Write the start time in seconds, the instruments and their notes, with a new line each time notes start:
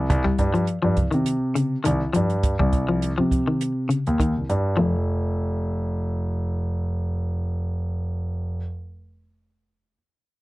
0.10 grand piano C2, kick, closed hi-hat
0.24 clean electric guitar G3, kick
0.38 grand piano G2, kick, closed hi-hat
0.54 clean electric guitar F3, closed hi-hat
0.67 closed hi-hat
0.82 grand piano G2, clean electric guitar F3
0.97 grand piano C2, kick, closed hi-hat
1.11 grand piano C3, clean electric guitar D#3, closed hi-hat
1.26 closed hi-hat
1.55 clean electric guitar C#3, closed hi-hat
1.84 grand piano C2, clean electric guitar D#3, closed hi-hat
2.13 grand piano G2, clean electric guitar F3, closed hi-hat
2.30 closed hi-hat
2.43 kick, closed hi-hat
2.59 grand piano C2, clean electric guitar G3, kick
2.73 kick, closed hi-hat
2.89 clean electric guitar F3
3.02 closed hi-hat
3.18 grand piano C3, clean electric guitar F3
3.31 kick, closed hi-hat
3.48 clean electric guitar D#3
3.61 closed hi-hat
3.89 clean electric guitar C#3, closed hi-hat
4.07 grand piano D#2, closed hi-hat
4.20 clean electric guitar D#3, kick, closed hi-hat
4.36 grand piano C2
4.50 grand piano G2, closed hi-hat
4.77 grand piano F1, clean electric guitar F3